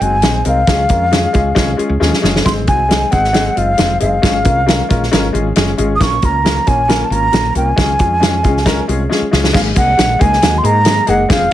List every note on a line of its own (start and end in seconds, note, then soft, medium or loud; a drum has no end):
0.00 0.23 F#1 medium
0.00 0.14 G#3 medium
0.00 0.14 C4 medium
0.00 0.14 D#4 medium
0.00 0.14 F#4 medium
0.00 0.46 G#5 loud
0.00 closed hi-hat medium
0.22 0.41 A#1 medium
0.22 0.36 G#3 medium
0.22 0.36 C4 medium
0.22 0.36 D#4 medium
0.22 0.36 G#4 medium
0.22 snare loud
0.22 closed hi-hat medium
0.45 0.63 C2 medium
0.45 0.58 G#3 medium
0.45 0.58 C4 medium
0.45 0.58 D#4 medium
0.45 0.58 A#4 medium
0.45 1.76 F5 medium
0.45 closed hi-hat medium
0.67 0.85 C#2 medium
0.67 0.80 G#3 medium
0.67 0.80 C#4 medium
0.67 0.81 F4 medium
0.67 0.81 G#4 medium
0.67 kick loud
0.67 snare loud
0.67 closed hi-hat medium
0.89 1.25 F2 medium
0.89 1.02 G#3 medium
0.89 1.02 C#4 medium
0.89 1.03 F4 medium
0.89 1.03 A#4 medium
0.89 kick medium
0.89 closed hi-hat medium
1.12 1.25 G#3 medium
1.12 1.25 C#4 medium
1.12 1.25 F4 medium
1.12 1.25 G#4 loud
1.12 snare loud
1.12 closed hi-hat medium
1.33 1.52 C#2 medium
1.33 1.47 G#3 medium
1.33 1.47 C#4 medium
1.33 1.47 F4 medium
1.33 1.47 G#4 medium
1.33 kick medium
1.33 closed hi-hat medium
1.55 1.74 C2 medium
1.55 1.69 G#3 loud
1.55 1.69 C#4 medium
1.55 1.69 F4 medium
1.55 1.69 G#4 loud
1.55 kick medium
1.55 snare loud
1.55 closed hi-hat medium
1.77 1.91 G#3 medium
1.77 1.91 C#4 medium
1.77 1.91 F4 medium
1.77 1.91 G#4 medium
1.77 muted fretless electric bass stroke soft
1.77 closed hi-hat medium
1.89 1.98 C#2 medium
2.00 2.10 D#2 medium
2.00 2.13 G#3 medium
2.00 2.13 C#4 medium
2.00 2.13 F4 medium
2.00 2.14 G#4 medium
2.00 snare medium
2.13 snare medium
2.22 2.41 F#1 medium
2.22 2.35 G#3 medium
2.22 2.36 C#4 medium
2.22 2.36 F4 medium
2.22 2.36 G#4 medium
2.22 snare medium
2.36 snare medium
2.45 2.68 G#1 loud
2.45 2.58 G#3 medium
2.45 2.58 C4 medium
2.45 2.58 D#4 medium
2.45 2.58 G#4 medium
2.45 2.52 C6 loud
2.45 kick medium
2.45 snare loud
2.45 closed hi-hat medium
2.67 3.03 C2 medium
2.67 2.80 G#3 medium
2.67 2.80 C4 medium
2.67 2.80 D#4 medium
2.67 2.81 F#4 medium
2.67 3.13 G#5 medium
2.67 kick medium
2.67 closed hi-hat medium
2.89 3.02 G#3 medium
2.89 3.02 C4 medium
2.89 3.02 D#4 medium
2.89 3.02 G#4 medium
2.89 snare medium
2.89 closed hi-hat medium
3.11 3.48 G#1 medium
3.11 3.24 G#3 medium
3.11 3.24 C4 medium
3.11 3.24 D#4 medium
3.11 3.25 G#4 medium
3.11 3.59 F#5 medium
3.11 kick medium
3.11 closed hi-hat medium
3.24 snare soft
3.33 3.46 G#3 medium
3.33 3.46 C4 medium
3.33 3.47 D#4 medium
3.33 3.47 G#4 loud
3.33 snare loud
3.33 closed hi-hat medium
3.56 3.74 F#1 medium
3.56 3.69 G#3 medium
3.56 3.69 C4 medium
3.56 3.69 D#4 medium
3.56 3.69 F4 medium
3.56 4.01 F5 medium
3.56 closed hi-hat medium
3.77 3.96 F1 medium
3.77 3.91 G#3 medium
3.77 3.91 C4 medium
3.77 3.91 D#4 medium
3.77 3.91 F4 medium
3.77 snare loud
3.77 closed hi-hat medium
4.00 4.19 F#1 medium
4.00 4.13 G#3 medium
4.00 4.13 C4 medium
4.00 4.13 D#4 medium
4.00 4.14 G#4 medium
4.00 5.30 F5 medium
4.00 closed hi-hat medium
4.22 4.47 G#1 medium
4.22 4.35 G#3 medium
4.22 4.35 C#4 medium
4.22 4.35 F4 medium
4.22 4.36 G#4 medium
4.22 kick loud
4.22 snare loud
4.22 closed hi-hat medium
4.43 4.80 C2 medium
4.43 4.57 G#3 medium
4.43 4.57 C#4 medium
4.43 4.57 F4 medium
4.43 4.58 A#4 medium
4.43 kick medium
4.43 closed hi-hat medium
4.66 4.80 G#3 medium
4.66 4.80 C#4 medium
4.66 4.80 F4 medium
4.66 4.80 A#4 medium
4.66 snare loud
4.66 closed hi-hat medium
4.89 5.08 A#1 medium
4.89 5.02 G#3 medium
4.89 5.02 C#4 medium
4.89 5.02 F4 medium
4.89 5.02 A#4 medium
4.89 kick medium
4.89 closed hi-hat medium
5.03 snare soft
5.12 5.30 G#1 medium
5.12 5.24 G#3 loud
5.12 5.25 C#4 medium
5.12 5.25 F4 medium
5.12 5.25 A#4 loud
5.12 snare loud
5.12 closed hi-hat medium
5.33 5.51 G#1 medium
5.33 5.46 G#3 medium
5.33 5.46 C#4 medium
5.33 5.47 F4 medium
5.33 5.47 G#4 medium
5.33 closed hi-hat medium
5.56 5.74 F#1 medium
5.56 5.69 G#3 medium
5.56 5.69 C#4 medium
5.56 5.69 F4 medium
5.56 5.69 G#4 medium
5.56 snare loud
5.56 closed hi-hat medium
5.78 5.96 G#1 medium
5.78 5.91 G#3 medium
5.78 5.91 C#4 medium
5.78 5.91 F4 medium
5.78 5.91 G#4 medium
5.78 closed hi-hat medium
5.96 6.13 A#3 medium
5.96 6.04 D#6 medium
6.00 6.18 A#1 medium
6.00 6.13 C#4 medium
6.00 6.13 F4 medium
6.00 6.13 A#4 medium
6.00 6.27 C#6 loud
6.00 kick loud
6.00 snare loud
6.00 closed hi-hat medium
6.22 6.58 C#2 medium
6.22 6.35 A#3 medium
6.22 6.35 C#4 medium
6.22 6.35 F4 medium
6.22 6.35 A#4 medium
6.22 6.69 A#5 medium
6.22 kick medium
6.22 closed hi-hat medium
6.44 6.57 A#3 medium
6.44 6.57 C#4 medium
6.44 6.57 F4 medium
6.44 6.58 A#4 medium
6.44 snare loud
6.44 closed hi-hat medium
6.66 7.02 A#1 medium
6.66 6.79 A#3 medium
6.66 6.79 C#4 medium
6.66 6.79 F4 medium
6.66 6.79 C#5 medium
6.66 7.06 G#5 medium
6.66 kick medium
6.66 closed hi-hat medium
6.88 7.01 A#3 medium
6.88 7.01 C#4 medium
6.88 7.02 F4 medium
6.88 7.02 A#4 loud
6.88 snare loud
6.88 closed hi-hat medium
7.05 7.14 A5 medium
7.10 7.28 G#1 medium
7.10 7.23 A#3 medium
7.10 7.24 C#4 medium
7.10 7.24 F4 medium
7.10 7.24 A#4 medium
7.10 7.56 A#5 loud
7.10 closed hi-hat medium
7.32 7.51 A#1 medium
7.32 7.45 A#3 medium
7.32 7.45 C#4 medium
7.32 7.45 F4 medium
7.32 7.46 A#4 medium
7.32 snare loud
7.32 closed hi-hat medium
7.55 7.73 C2 medium
7.55 7.68 A#3 medium
7.55 7.68 C#4 medium
7.55 7.68 F4 medium
7.55 7.68 A#4 medium
7.55 8.85 G#5 medium
7.55 closed hi-hat medium
7.76 7.95 C#2 loud
7.76 7.89 G#3 medium
7.76 7.90 C#4 medium
7.76 7.90 F4 medium
7.76 7.90 G#4 medium
7.76 kick medium
7.76 snare loud
7.76 closed hi-hat medium
7.99 8.46 F2 medium
7.99 8.12 G#3 medium
7.99 8.12 C#4 medium
7.99 8.12 F4 medium
7.99 8.12 G#4 medium
7.99 kick medium
7.99 closed hi-hat medium
8.20 8.33 G#3 medium
8.20 8.34 C#4 medium
8.20 8.34 F4 medium
8.20 8.34 G#4 medium
8.20 snare loud
8.20 closed hi-hat medium
8.43 8.79 C#2 medium
8.43 8.56 G#3 medium
8.43 8.57 C#4 medium
8.43 8.57 F4 medium
8.43 8.57 G#4 medium
8.43 kick medium
8.43 closed hi-hat medium
8.57 snare soft
8.66 8.78 G#3 loud
8.66 8.78 C#4 medium
8.66 8.79 F4 medium
8.66 8.79 A#4 loud
8.66 kick medium
8.66 snare loud
8.66 closed hi-hat medium
8.88 9.06 C2 medium
8.88 9.00 G#3 medium
8.88 9.01 C#4 medium
8.88 9.01 F4 medium
8.88 9.01 G#4 medium
8.88 closed hi-hat medium
9.09 9.22 G#3 medium
9.09 9.22 C#4 medium
9.09 9.22 F4 medium
9.09 9.23 G#4 medium
9.09 snare medium
9.22 muted fretless electric bass stroke soft
9.31 9.50 C#2 medium
9.31 9.44 G#3 medium
9.31 9.44 C#4 medium
9.31 9.45 F4 medium
9.31 9.45 G#4 medium
9.31 snare medium
9.44 snare medium
9.53 9.72 G#1 loud
9.53 9.66 G#3 loud
9.53 9.66 A#3 medium
9.53 9.67 D#4 medium
9.53 9.67 G#4 loud
9.53 9.61 F5 medium
9.53 kick loud
9.53 snare loud
9.53 crash loud
9.75 9.94 C2 medium
9.75 9.88 G#3 medium
9.75 9.88 A#3 medium
9.75 9.88 D#4 medium
9.75 9.88 G#4 medium
9.75 10.22 F#5 medium
9.75 kick medium
9.75 closed hi-hat medium
9.97 10.16 A#1 medium
9.97 10.10 G#3 medium
9.97 10.10 A#3 medium
9.97 10.10 D#4 medium
9.97 10.10 G#4 medium
9.97 snare loud
9.97 closed hi-hat medium
10.19 10.38 C#2 medium
10.19 10.32 G#3 medium
10.19 10.32 A#3 medium
10.19 10.33 D#4 medium
10.19 10.33 G#4 medium
10.19 10.59 G#5 loud
10.19 kick medium
10.19 closed hi-hat medium
10.33 snare soft
10.42 10.54 G#3 medium
10.42 10.55 A#3 medium
10.42 10.55 D#4 medium
10.42 10.55 F#4 medium
10.42 snare loud
10.42 closed hi-hat medium
10.58 10.67 C6 medium
10.63 10.98 G#2 medium
10.63 10.76 G#3 medium
10.63 10.76 A#3 medium
10.63 10.76 D#4 medium
10.63 10.76 G#4 medium
10.63 11.11 A#5 loud
10.63 closed hi-hat medium
10.85 10.98 G#3 medium
10.85 10.98 A#3 medium
10.85 10.98 D#4 medium
10.85 10.98 G#4 medium
10.85 snare loud
10.85 closed hi-hat medium
11.07 11.25 F#1 medium
11.07 11.20 G#3 medium
11.07 11.20 A#3 medium
11.07 11.20 D#4 medium
11.07 11.20 G#4 loud
11.07 11.30 F#5 loud
11.07 closed hi-hat medium
11.29 11.47 F1 loud
11.29 11.42 G#3 medium
11.29 11.42 C4 medium
11.29 11.42 F4 medium
11.29 11.42 G#4 loud
11.29 11.53 F5 medium
11.29 kick loud
11.29 snare loud
11.29 closed hi-hat medium